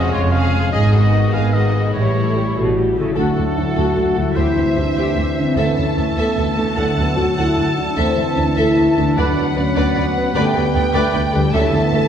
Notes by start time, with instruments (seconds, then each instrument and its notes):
Already playing: harp F2 G#3 G#4 C#5, trombone section C#3 G#3, viola section F3 C#4, violin section F#4 D#5, oboe D#5
0.12 double bass section F1, cello section F2, viola section G#3 F4, violin section F4 C#5, oboe C#5, harp C#5
0.31 viola section F3 C#4, violin section G#4 F5, harp G#4, oboe F5
0.53 viola section G#3 F4, harp C#5
0.72 double bass section G#1, harp G#2, cello section G#2, trombone section D#3 B3, viola section G#3 D#4, violin section G#4 D#5, oboe D#5
0.91 harp G#3, viola section B3 G#4, violin section F#4 D#5, oboe D#5
1.12 viola section G#3 D#4, harp G#4
1.32 double bass section G#1, cello section G#2, viola section B3 G#4, violin section G#4 F5, harp B4, oboe F5
1.53 viola section G#3 D#4, violin section F#4 D#5, harp G#4, oboe D#5
1.72 viola section B3 G#4, harp B4
1.93 double bass section A1, cello section A2, harp A2, trombone section E3 G3, viola section G3 G4, violin section E4 C#5, oboe C#5
2.14 harp G3, viola section A3 A4
2.35 viola section G3 G4, harp E4, french horn section G4
2.56 double bass section A1, cello section B2, viola section A3 A4, french horn section F#4, harp A4
2.76 cello section A2, viola section G3 G4, harp G4
2.96 cello section C#3, harp D3 A4, viola section A3 A4, french horn section E4
3.04 harp F#3
3.08 harp D4
3.13 cello section D2, trombone section F#3 A3, harp A4, violin section A4, oboe A4
3.17 double bass section D2, french horn section D4, viola section F#4, violin section A4, flute section F#5
3.36 cello section D2, double bass section D2, viola section F#4, violin section A4
3.56 double bass section D2, cello section D2, french horn section E4, viola section F#4, violin section A4
3.75 cello section D2, double bass section D2, viola section F#4, french horn section F#4, violin section A4
3.95 cello section D2, double bass section D2, viola section F#4, violin section A4
4.16 cello section D2, double bass section D2, harp D3, french horn section E4, viola section F#4, violin section A4
4.23 harp G3
4.27 harp E4
4.32 harp C5, violin section C5, oboe C5
4.36 cello section D2, double bass section D2, trombone section E3 C4, viola section G4, violin section E5, flute section E5
4.56 double bass section D2, cello section D2, viola section G4, violin section C5
4.76 double bass section D2, cello section D2, french horn section D4, viola section G4, violin section C5
4.96 cello section D2, double bass section D2, viola section G4, violin section C5
5.16 cello section D2, double bass section D2, viola section G4, violin section C5
5.39 harp D3, french horn section C4
5.44 harp A3
5.48 harp E4
5.53 cello section D2, double bass section D2, harp A4, violin section E5
5.57 trombone section A3, french horn section B3, oboe A4, viola section A4, violin section A5
5.77 double bass section D2, cello section D2, french horn section C#4, viola section A4, violin section E5
5.96 double bass section D2, cello section D2, viola section A4, violin section E5
6.16 cello section D2, double bass section D2, french horn section B3, viola section A4, violin section E5
6.36 double bass section D2, cello section D2, viola section A4, violin section E5
6.56 double bass section D2, cello section D2, harp D3, french horn section A3, viola section A4, violin section E5
6.64 harp A3
6.68 harp F#4
6.73 harp A4, violin section F#5
6.77 double bass section D2, cello section D2, timpani D3, trombone section F#3, french horn section D4, viola section A4, flute section F#5
6.96 cello section D2, double bass section D2, french horn section B3, viola section A4, violin section F#5
7.17 cello section D2, double bass section D2, french horn section F#4, viola section A4, violin section F#5
7.37 cello section D2, double bass section D2, french horn section E4, viola section A4, violin section F#5
7.56 cello section D2, double bass section D2, viola section A4, violin section F#5
7.78 harp D3, french horn section D4
7.84 harp A3
7.88 harp E4
7.93 harp A4, violin section E5
7.97 cello section D2, double bass section D2, trombone section E3, french horn section C4, viola section A4, flute section A5
8.16 double bass section D2, cello section D2, viola section A4, violin section E5
8.36 double bass section D2, cello section D2, french horn section D4, viola section A4, violin section E5
8.56 double bass section D2, cello section D2, french horn section E4, viola section A4, violin section E5
8.76 double bass section D2, cello section D2, viola section A4, violin section E5
8.96 double bass section D2, cello section D2, harp D3, french horn section D4, viola section A4, violin section E5
9.04 harp B3
9.08 harp D4
9.13 harp F#4, violin section D5
9.17 double bass section D2, cello section D2, timpani D3, trombone section F#3 B3, oboe B4, viola section B4, flute section F#5, violin section F#5
9.36 double bass section D2, cello section D2, viola section B4, violin section D5
9.56 cello section D2, double bass section D2, french horn section C#4, viola section B4, violin section D5
9.76 cello section D2, double bass section D2, viola section B4, violin section D5
9.95 cello section D2, double bass section D2, viola section B4, violin section D5
10.17 harp D3, french horn section B3
10.21 harp B3
10.26 harp D4
10.30 trombone section G3, harp G4
10.35 cello section D2, double bass section D2, french horn section A3, viola section B4, violin section D5 G5, flute section G5
10.54 cello section D2, double bass section D2, french horn section B3, viola section B4, violin section D5
10.74 cello section D2, double bass section D2, viola section B4, violin section D5
10.94 cello section D2, double bass section D2, french horn section A3, viola section B4, violin section D5
11.13 cello section D2, double bass section D2, viola section B4, violin section D5
11.32 cello section D2, double bass section D2, harp D3, french horn section G3, viola section B4, violin section D5
11.39 harp A3
11.44 harp E4
11.48 harp A4
11.53 cello section D2, double bass section D2, timpani D3, trombone section E3 A3, french horn section C#4, viola section A4, oboe A4, violin section E5 A5, flute section E5
11.73 cello section D2, double bass section D2, french horn section B3, viola section A4, violin section E5
11.92 cello section D2, double bass section D2, viola section A4, french horn section A4, violin section E5